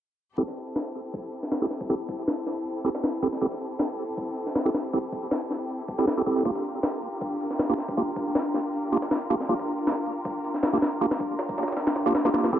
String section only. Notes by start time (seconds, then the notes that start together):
0.38 C4 E4 G4 A4
6.45 D4 F4 A#4
12.53 C4 E4 G4 A4